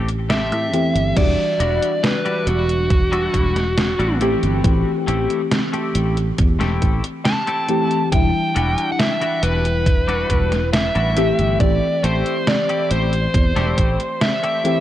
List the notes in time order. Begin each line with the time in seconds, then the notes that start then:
Already playing: A1 E3 A3 C4 G4
0.08 closed hi-hat
0.30 A3 C4 G4 E5, snare, closed hi-hat
0.52 A2, closed hi-hat
0.73 E2 E3 A3 C4 G4, closed hi-hat
0.95 G1, closed hi-hat
1.15 E1 E3 G3 D4 F#4 D5, kick, closed hi-hat, crash
1.60 E1 G3 D4 E4 F#4, closed hi-hat
1.83 closed hi-hat
2.04 B4, snare, closed hi-hat
2.25 G3 D4 E4 F#4, closed hi-hat
2.47 E1 F#4, closed hi-hat
2.69 closed hi-hat
2.91 kick, closed hi-hat
3.12 G3 D4 E4 F#4, closed hi-hat
3.34 E1, kick, closed hi-hat
3.56 snare, closed hi-hat
3.78 snare, closed hi-hat
3.99 A1 G3 D4 E4 F#4, closed hi-hat
4.20 E3 A3 C4 E4 G4, closed hi-hat
4.43 G1, closed hi-hat
4.63 A1 E3 A3 C4 G4, kick, closed hi-hat
5.07 A1 A3 C4 E4 G4, closed hi-hat
5.30 closed hi-hat
5.52 snare, closed hi-hat
5.73 A3 C4 E4 G4, closed hi-hat
5.95 A1, closed hi-hat
6.17 closed hi-hat
6.38 E2, kick, closed hi-hat
6.60 E1 A3 C4 E4 G4, snare, closed hi-hat
6.82 A1, kick, closed hi-hat
7.04 closed hi-hat
7.25 A5, snare, closed hi-hat
7.47 A3 C4 E4 G4, closed hi-hat
7.68 E3 A3 C4 G4, closed hi-hat
7.91 closed hi-hat
8.11 E1 E3 G3 D4 E4 G5, kick, closed hi-hat
8.55 E1 G3 D4 E4 F#4, closed hi-hat
8.78 closed hi-hat
8.92 F#5
8.99 E5, snare, closed hi-hat
9.21 G3 D4 E4 F#4, closed hi-hat
9.43 E1 B4, closed hi-hat
9.65 closed hi-hat
9.86 kick, closed hi-hat
10.08 G3 D4 E4 F#4, closed hi-hat
10.30 E1, kick, closed hi-hat
10.52 snare, closed hi-hat
10.73 E5, snare, closed hi-hat
10.95 A1 G3 D4 E4 F#4, closed hi-hat
11.16 E3 A3 C4 E4 G4, closed hi-hat
11.39 G1, closed hi-hat
11.59 A1 E3 A3 C4 G4 D5, kick, closed hi-hat
12.03 A1 A3 C4 E4 G4 C5, closed hi-hat
12.26 closed hi-hat
12.47 D5, snare, closed hi-hat
12.69 A3 C4 E4 G4, closed hi-hat
12.91 A1 C5, closed hi-hat
13.13 closed hi-hat
13.34 E2, kick, closed hi-hat
13.56 E1 A3 C4 E4 G4, snare, closed hi-hat
13.78 A1, kick, closed hi-hat
14.00 closed hi-hat
14.21 E5, snare, closed hi-hat
14.43 A3 C4 E4 G4, closed hi-hat
14.64 E3 A3 C4 G4, closed hi-hat